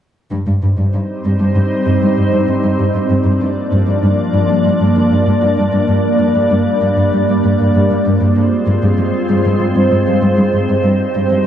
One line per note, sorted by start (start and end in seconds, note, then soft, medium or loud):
0.32 0.38 G2 soft
0.32 2.75 G3 soft
0.32 2.76 C4 soft
0.32 2.76 D#4 soft
0.32 2.75 C5 soft
0.47 0.54 G2 soft
0.63 0.69 G2 soft
0.79 0.85 G2 soft
0.94 1.00 G2 soft
1.25 1.31 G2 soft
1.40 1.46 G2 soft
1.56 1.62 G2 soft
1.86 1.92 G2 soft
2.02 2.08 G2 soft
2.17 2.24 G2 soft
2.32 2.39 G2 soft
2.48 2.54 G2 soft
2.64 2.70 G2 soft
2.79 2.86 G2 soft
2.79 5.27 F3 soft
2.79 7.75 A#3 soft
2.79 7.75 D4 soft
2.79 7.75 D5 soft
2.95 3.01 G2 soft
3.10 3.16 G2 soft
3.25 3.31 G2 soft
3.41 3.47 G2 soft
3.72 3.79 G2 soft
3.87 3.94 G2 soft
4.03 4.09 G2 soft
4.34 4.40 G2 soft
4.50 4.56 G2 soft
4.65 4.71 G2 soft
4.81 4.87 G2 soft
4.96 5.02 G2 soft
5.12 5.18 G2 soft
5.26 5.33 G2 soft
5.26 7.74 G3 soft
5.42 5.48 G2 soft
5.58 5.64 G2 soft
5.73 5.79 G2 soft
5.88 5.95 G2 soft
6.20 6.26 G2 soft
6.35 6.41 G2 soft
6.51 6.57 G2 soft
6.82 6.88 G2 soft
6.98 7.04 G2 soft
7.13 7.19 G2 soft
7.29 7.35 G2 soft
7.44 7.50 G2 soft
7.60 7.66 G2 soft
7.75 7.82 G2 soft
7.75 10.22 G#3 soft
7.75 11.47 C4 soft
7.75 10.22 F4 soft
7.75 11.47 C5 soft
7.91 7.97 G2 soft
8.06 8.12 G2 soft
8.21 8.27 G2 soft
8.36 8.43 G2 soft
8.68 8.74 G2 soft
8.83 8.89 G2 soft
8.98 9.04 G2 soft
9.29 9.35 G2 soft
9.45 9.51 G2 soft
9.60 9.66 G2 soft
9.76 9.82 G2 soft
9.91 9.98 G2 soft
10.07 10.13 G2 soft
10.22 10.28 G2 soft
10.22 11.47 G3 soft
10.22 11.47 D#4 soft
10.38 10.44 G2 soft
10.53 10.59 G2 soft
10.69 10.75 G2 soft
10.84 10.90 G2 soft
11.15 11.21 G2 soft
11.31 11.37 G2 soft